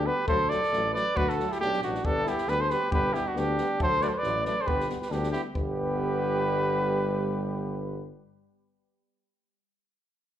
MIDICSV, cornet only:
0, 0, Header, 1, 2, 480
1, 0, Start_track
1, 0, Key_signature, 1, "major"
1, 0, Tempo, 439560
1, 299, Time_signature, 2, 2, 24, 8
1, 11351, End_track
2, 0, Start_track
2, 0, Title_t, "Cornet"
2, 0, Program_c, 0, 56
2, 69, Note_on_c, 0, 71, 86
2, 302, Note_off_c, 0, 71, 0
2, 308, Note_on_c, 0, 72, 97
2, 539, Note_on_c, 0, 74, 97
2, 555, Note_off_c, 0, 72, 0
2, 1017, Note_off_c, 0, 74, 0
2, 1023, Note_on_c, 0, 74, 99
2, 1277, Note_on_c, 0, 71, 95
2, 1293, Note_off_c, 0, 74, 0
2, 1411, Note_on_c, 0, 69, 70
2, 1427, Note_off_c, 0, 71, 0
2, 1661, Note_on_c, 0, 67, 79
2, 1677, Note_off_c, 0, 69, 0
2, 1742, Note_off_c, 0, 67, 0
2, 1748, Note_on_c, 0, 67, 107
2, 1969, Note_off_c, 0, 67, 0
2, 2000, Note_on_c, 0, 66, 78
2, 2241, Note_on_c, 0, 69, 92
2, 2257, Note_off_c, 0, 66, 0
2, 2494, Note_on_c, 0, 67, 83
2, 2511, Note_off_c, 0, 69, 0
2, 2721, Note_on_c, 0, 71, 96
2, 2738, Note_off_c, 0, 67, 0
2, 2849, Note_on_c, 0, 72, 89
2, 2865, Note_off_c, 0, 71, 0
2, 2953, Note_on_c, 0, 71, 89
2, 2969, Note_off_c, 0, 72, 0
2, 3187, Note_off_c, 0, 71, 0
2, 3202, Note_on_c, 0, 71, 85
2, 3424, Note_on_c, 0, 67, 81
2, 3440, Note_off_c, 0, 71, 0
2, 3581, Note_on_c, 0, 66, 66
2, 3597, Note_off_c, 0, 67, 0
2, 3695, Note_on_c, 0, 67, 94
2, 3711, Note_off_c, 0, 66, 0
2, 4158, Note_off_c, 0, 67, 0
2, 4183, Note_on_c, 0, 72, 97
2, 4400, Note_on_c, 0, 74, 86
2, 4417, Note_off_c, 0, 72, 0
2, 4467, Note_on_c, 0, 72, 68
2, 4483, Note_off_c, 0, 74, 0
2, 4567, Note_on_c, 0, 74, 100
2, 4583, Note_off_c, 0, 72, 0
2, 4869, Note_off_c, 0, 74, 0
2, 4876, Note_on_c, 0, 74, 92
2, 5038, Note_on_c, 0, 72, 86
2, 5054, Note_off_c, 0, 74, 0
2, 5097, Note_on_c, 0, 71, 85
2, 5113, Note_off_c, 0, 72, 0
2, 5339, Note_off_c, 0, 71, 0
2, 5460, Note_on_c, 0, 71, 67
2, 5593, Note_on_c, 0, 67, 73
2, 5609, Note_off_c, 0, 71, 0
2, 5797, Note_off_c, 0, 67, 0
2, 5804, Note_on_c, 0, 67, 74
2, 5915, Note_off_c, 0, 67, 0
2, 6061, Note_on_c, 0, 71, 82
2, 8810, Note_off_c, 0, 71, 0
2, 11351, End_track
0, 0, End_of_file